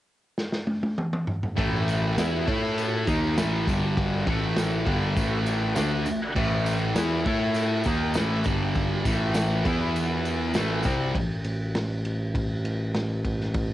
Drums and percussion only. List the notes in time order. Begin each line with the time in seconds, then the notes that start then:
0.38 snare
0.52 snare
0.67 high tom
0.83 high tom
0.98 mid tom
1.13 mid tom
1.27 floor tom
1.43 floor tom
1.58 kick, ride
1.88 ride, tambourine
2.18 snare, ride, tambourine
2.48 kick, ride
2.78 ride, tambourine
3.07 kick, ride, tambourine
3.38 snare, ride, tambourine
3.67 kick, ride, tambourine
3.97 kick, ride
4.27 kick, ride
4.57 snare, ride, tambourine
4.87 kick, ride
5.16 kick, ride, tambourine
5.46 ride, tambourine
5.76 snare, ride, tambourine
6.06 ride, tambourine
6.36 kick, crash
6.66 ride, tambourine
6.96 snare, ride, tambourine
7.26 kick, ride
7.54 ride, tambourine
7.84 kick, ride, tambourine
8.14 snare, ride, tambourine
8.44 kick, ride, tambourine
8.74 kick, ride, tambourine
9.05 kick, ride, tambourine
9.34 snare, ride, tambourine
9.65 kick, ride, tambourine
9.96 ride, tambourine
10.25 ride, tambourine
10.54 snare, ride, tambourine
10.83 kick, ride, tambourine
11.15 kick, ride
11.44 ride
11.75 snare, ride
12.05 ride
12.35 kick, ride
12.65 ride
12.95 snare, ride
13.25 kick, ride
13.40 snare
13.54 kick, ride